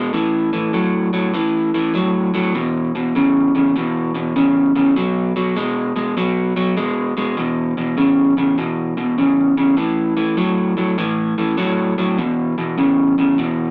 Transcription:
Already playing: B2 G#3
0.13 A2 E3
0.53 A2 E3
0.73 A2 F#3
1.13 A2 F#3
1.34 A2 E3
1.74 A2 E3
1.94 A2 F#3
2.34 A2 F#3
2.54 E2 B2
2.95 E2 B2
3.15 E2 C#3
3.55 E2 C#3
3.76 E2 B2
4.15 E2 B2
4.36 E2 C#3
4.76 E2 C#3
4.96 B2 F#3
5.36 B2 F#3
5.56 B2 G#3
5.96 B2 G#3
6.17 B2 F#3
6.56 B2 F#3
6.77 B2 G#3
7.17 B2 G#3
7.37 E2 B2
7.77 E2 B2
7.97 E2 C#3
8.37 E2 C#3
8.58 E2 B2
8.97 E2 B2
9.18 E2 C#3
9.57 E2 C#3
9.77 A2 E3
10.17 A2 E3
10.37 A2 F#3
10.77 A2 F#3
10.98 A2 E3
11.38 A2 E3
11.57 A2 F#3
11.98 A2 F#3
12.18 E2 B2
12.58 E2 B2
12.78 E2 C#3
13.18 E2 C#3
13.38 E2 B2

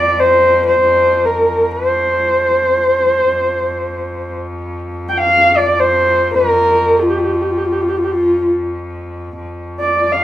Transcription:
Already playing: F2 D5
0.20 C5
0.66 C5
1.25 A#4
1.71 C5
3.28 F2
5.09 G5
5.17 F5
5.57 D5
5.80 C5
6.34 A#4
7.01 F4
7.09 G4
7.18 F4
7.24 G4
7.33 F4
7.41 G4
7.50 F4
7.57 G4
7.65 F4
7.72 G4
7.81 F4
7.88 G4
7.97 F4
8.04 G4
8.11 F4
9.37 F2
9.80 D5
10.12 F5

